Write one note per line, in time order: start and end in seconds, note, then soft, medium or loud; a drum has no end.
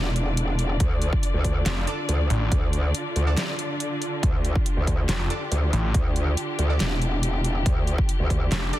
0.00 0.79 E1 loud
0.00 8.79 D3 medium
0.00 8.79 D4 medium
0.00 8.79 F4 medium
0.00 4.21 D5 medium
0.16 closed hi-hat medium
0.37 closed hi-hat medium
0.59 closed hi-hat medium
0.80 1.11 D2 loud
0.80 kick loud
0.80 closed hi-hat medium
1.02 closed hi-hat medium
1.13 kick loud
1.23 closed hi-hat medium
1.34 1.64 D2 loud
1.44 kick medium
1.44 closed hi-hat medium
1.66 1.86 F1 medium
1.66 snare loud
1.66 clap medium
1.66 closed hi-hat medium
1.87 2.00 D4 medium
1.87 2.00 A4 medium
1.87 2.00 D5 loud
1.87 closed hi-hat medium
2.09 2.29 D2 loud
2.09 closed hi-hat medium
2.30 2.50 A1 loud
2.30 closed hi-hat medium
2.52 2.93 D2 loud
2.52 kick loud
2.52 closed hi-hat medium
2.73 closed hi-hat medium
2.95 closed hi-hat medium
3.16 3.36 D2 loud
3.16 closed hi-hat medium
3.27 3.39 D4 medium
3.27 3.39 A4 medium
3.27 3.39 D5 medium
3.37 snare loud
3.37 clap medium
3.37 closed hi-hat medium
3.59 closed hi-hat medium
3.80 closed hi-hat medium
4.02 closed hi-hat medium
4.23 4.54 D2 loud
4.23 8.79 G4 loud
4.23 kick loud
4.23 closed hi-hat medium
4.45 closed hi-hat medium
4.55 kick loud
4.66 closed hi-hat medium
4.77 5.07 D2 loud
4.87 kick medium
4.87 closed hi-hat medium
5.09 5.29 F1 loud
5.09 snare loud
5.09 clap loud
5.09 closed hi-hat medium
5.30 5.43 D4 medium
5.30 5.43 A4 medium
5.30 5.43 D5 medium
5.30 closed hi-hat medium
5.52 5.71 D2 loud
5.52 closed hi-hat medium
5.73 5.93 A1 loud
5.73 closed hi-hat medium
5.94 6.36 D2 medium
5.94 kick loud
5.94 closed hi-hat medium
6.16 closed hi-hat medium
6.37 closed hi-hat medium
6.59 6.79 D2 loud
6.59 closed hi-hat medium
6.70 6.82 D4 medium
6.70 6.82 A4 medium
6.70 6.82 D5 medium
6.80 7.64 E1 loud
6.80 snare loud
6.80 clap medium
6.80 closed hi-hat medium
7.02 closed hi-hat medium
7.23 closed hi-hat medium
7.44 closed hi-hat medium
7.66 7.97 D2 loud
7.66 kick loud
7.66 closed hi-hat medium
7.87 closed hi-hat medium
7.98 kick loud
8.09 closed hi-hat medium
8.20 8.50 D2 loud
8.30 kick medium
8.30 closed hi-hat medium
8.52 8.71 F1 medium
8.52 snare loud
8.52 clap medium
8.52 closed hi-hat medium
8.73 8.79 D4 medium
8.73 8.79 A4 medium
8.73 8.79 D5 loud
8.73 closed hi-hat medium